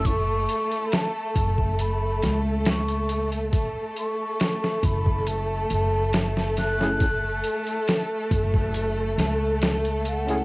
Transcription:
<<
  \new Staff \with { instrumentName = "Flute" } { \time 4/4 \key fis \minor \tempo 4 = 69 cis'''4 a''4 b''8 r8 cis'''8. r16 | r8 cis'''4 b''8 a''4. fis'''8~ | fis'''4 r2 r8 fis''8 | }
  \new Staff \with { instrumentName = "Violin section" } { \time 4/4 \key fis \minor <a a'>1 | <a a'>1~ | <a a'>1 | }
  \new Staff \with { instrumentName = "Reed electric piano" } { \time 4/4 \key fis \minor r1 | r2. r8. <a cis' e' gis'>16 | r2. r8. <a cis' e' gis'>16 | }
  \new Staff \with { instrumentName = "Upright bass" } { \clef bass \time 4/4 \key fis \minor fis,,8 r4 fis,,4 cis,4. | r4. fis,,4 fis,,4.~ | fis,,8 r4 fis,,4 cis,4. | }
  \new DrumStaff \with { instrumentName = "Drums" } \drummode { \time 4/4 <hh bd>8 hh16 hh16 <hh sn>8 <hh bd>16 bd16 hh8 <hh sn>8 <hh sn>16 hh16 hh16 hh16 | <hh bd>8 hh8 <hh sn>16 sn16 <hh bd>16 bd16 hh8 hh8 <hh sn>16 sn16 <hh sn>16 sn16 | <hh bd>8 hh16 hh16 <hh sn>8 <hh bd>16 bd16 hh8 <hh sn>8 <hh sn>16 hh16 hh16 hh16 | }
>>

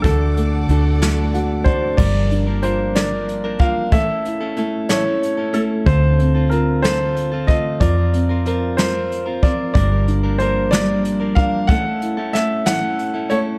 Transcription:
<<
  \new Staff \with { instrumentName = "String section" } { \time 6/8 \key g \minor \tempo 4. = 62 <a' d'' fis'' d'''>2. | r2. | r2. | r2. |
r2. | r2. | r2. | }
  \new Staff \with { instrumentName = "Grand piano" } { \time 6/8 \key g \minor a'2~ a'8 c''8 | d''4 c''8 d''4 f''8 | e''4. cis''4 a'8 | c''4 bes'8 c''4 ees''8 |
d''4. c''4 d''8 | d''4 c''8 d''4 f''8 | fis''4 e''8 fis''4 cis''8 | }
  \new Staff \with { instrumentName = "Upright piano" } { \time 6/8 \key g \minor d8 a8 d'8 a8 <fis' fis''>8 <d' d''>8 | g8 d'8 f'8 bes'4 f'8 | a8 e'8 a8 e'4 a8 | d8 c'8 f'8 a'4 f'8 |
f8 c'8 bes'8 f4 c'8 | g8 d'8 bes'8 g4 d'8 | a8 e'8 a8 e'4 a8 | }
  \new Staff \with { instrumentName = "Clean electric guitar" } { \time 6/8 \key g \minor <d a d' fis' a'>4 <a d' fis' a'>8 <d a d' fis' a'>4 <d' fis' a'>8 | <g, d f bes d' bes'>16 <f bes d' bes'>8 <f bes d' bes'>16 <f bes d' bes'>8 <g, d f bes d' bes'>16 <f bes d' bes'>8 <f bes d' bes'>16 <f bes d' bes'>8 | <a, e a cis' e' a'>16 <a cis' e' a'>8 <a cis' e' a'>16 <a cis' e' a'>8 <a, e a cis' e' a'>16 <a cis' e' a'>8 <a cis' e' a'>16 <a cis' e' a'>8 | <d a c' f' a'>16 <c' f' a'>8 <c' f' a'>16 <c' f'>8 <d a c' f' a'>16 <c' f' a'>8 <c' f' a'>16 <a c' f' a'>8 |
<f c' f' bes'>16 <c' f' bes'>8 <c' f' bes'>16 <f c' f' bes'>8 <f c' f' bes'>16 <c' f' bes'>8 <c' f' bes'>16 <f c' f' bes'>8 | <g, d f bes d' bes'>16 <f bes d' bes'>8 <f bes d' bes'>16 <f bes d' bes'>8 <g, d f bes d' bes'>16 <f bes d' bes'>8 <f bes d' bes'>16 <f bes d' bes'>8 | <a, e a cis' e' a'>16 <a cis' e' a'>8 <a cis' e' a'>16 <a cis' e' a'>8 <a, e a cis' e' a'>16 <a cis' e' a'>8 <a cis' e' a'>16 <a cis' e' a'>8 | }
  \new Staff \with { instrumentName = "Fingered electric bass" } { \clef bass \time 6/8 \key g \minor d,4 d,2 | g,,2. | a,,2. | d,2. |
f,2. | g,,2. | a,,2. | }
  \new DrumStaff \with { instrumentName = "Drums" } \drummode { \time 6/8 <hh bd>8 hh8 hh8 <hh sn>8 hh8 <hh bd>8 | <cymc bd>8 hh8 hh8 <hh sn>8 hh8 <hh bd>8 | <hh bd>8 hh8 hh8 <hh sn>8 hh8 hh8 | <hh bd>8 hh8 hh8 <hh sn>8 hh8 <hh bd>8 |
<hh bd>8 hh8 hh8 <hh sn>8 hh8 <hh bd>8 | <hh bd>8 hh8 hh8 <hh sn>8 hh8 <hh bd>8 | <hh bd>8 hh8 <hh sn>8 <hh sn>8 hh8 hh8 | }
>>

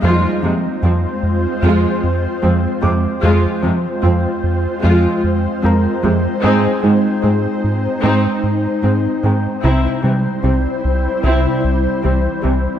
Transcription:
<<
  \new Staff \with { instrumentName = "Grand piano" } { \time 4/4 \key f \dorian \tempo 4 = 75 <c'' c''' f'''>2. r8 d'''8~ | d'''2~ d'''8 r8 <bes' bes''>4 | <aes' aes''>2. r8 g''8 | bes''2. r4 | }
  \new Staff \with { instrumentName = "Ambient pad" } { \time 4/4 \key f \dorian << { <aes c' c''>1 | <aes c' c''>1~ | <aes c' c''>1 | <g c' c''>1 | } \\ { f'1 | f'1 | ees'1 | e'1 | } >> }
  \new Staff \with { instrumentName = "Synth pluck" } { \clef bass \time 4/4 \key f \dorian f8 c'8 f'8 r8 f8 r8 aes8 aes8 | f8 c'8 f'8 r8 f8 r8 aes8 aes8 | aes8 ees'8 aes'8 r8 aes8 r8 c'8 c'8 | c8 g8 c'8 r8 c8 r8 e8 e8 | }
  \new Staff \with { instrumentName = "Viola section" } { \clef bass \time 4/4 \key f \dorian <aes f'>8 <c aes>8 <f c'>8 r8 <aes f'>8 r8 <f c'>8 <c aes>8 | <aes f'>8 <c aes>8 <f c'>8 r8 <aes f'>8 r8 <f c'>8 <c aes>8 | <c' ees'>8 <ees aes>8 <aes c'>8 r8 <c' ees'>8 r8 <aes c'>8 <ees aes>8 | <c' e'>8 <e g>8 <g c'>8 r8 <c' e'>8 r8 <g c'>8 <e g>8 | }
  \new Staff \with { instrumentName = "Cello section" } { \clef bass \time 4/4 \key f \dorian f,8 f,8 f,8 r8 f,8 r8 f,8 f,8 | f,8 f,8 f,8 r8 f,8 r8 f,8 f,8 | aes,8 aes,8 aes,8 r8 aes,8 r8 aes,8 aes,8 | c8 c8 c8 r8 c8 r8 c8 c8 | }
  \new Staff \with { instrumentName = "Analog synth bass" } { \clef bass \time 4/4 \key f \dorian f,8 f8 f,8 f,8 f,8 f,8 f,8 f,8 | f,8 f8 f,8 f,8 f,8 f,8 f,8 f,8 | aes,8 aes8 aes,8 aes,8 aes,8 aes,8 aes,8 aes,8 | c,8 c8 c,8 c,8 c,8 c,8 c,8 c,8 | }
>>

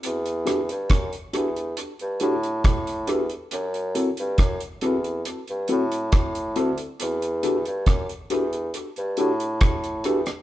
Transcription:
<<
  \new Staff \with { instrumentName = "Tine electric piano" } { \time 4/4 \key e \minor \tempo 4 = 69 r8 <d' fis' g' a'>16 r8. <d' fis' g' a'>16 r8. <d' fis' g' a'>16 r8. <d' fis' g' a'>16 r16 | r8 <c' e' fis' a'>16 r8. <c' e' fis' a'>16 r8. <c' e' fis' a'>16 r8. <c' e' fis' a'>16 <fis' a'>16 | r8 <d' fis' g' a'>16 r8. <d' fis' g' a'>16 r8. <d' fis' g' a'>16 r8. <d' fis' g' a'>16 r16 | }
  \new Staff \with { instrumentName = "Bassoon" } { \clef bass \time 4/4 \key e \minor e,8. g,16 fis,16 r16 e,8 r16 g,16 a,8 a,8 e,16 r16 | fis,8. g,16 fis,16 r16 e,8 r16 g,16 a,8 a,8 d,16 r16 | e,8. g,16 fis,16 r16 e,8 r16 g,16 a,8 a,8 e,16 r16 | }
  \new DrumStaff \with { instrumentName = "Drums" } \drummode { \time 4/4 hh16 hh16 <hh ss>16 hh16 <hh bd ss>16 hh16 hh16 hh16 hh16 hh16 hh16 hh16 <hh bd ss>16 hh16 hh16 hh16 | hh16 hh16 hh16 hh16 <hh bd ss>16 hh16 hh16 hh16 hh16 hh16 hh16 hh16 <hh bd ss>16 hh16 hh16 hh16 | hh16 hh16 hh16 hh16 <hh bd ss>16 hh16 hh16 hh16 hh16 hh16 hh16 hh16 <hh bd ss>16 hh16 hh16 <hh ss>16 | }
>>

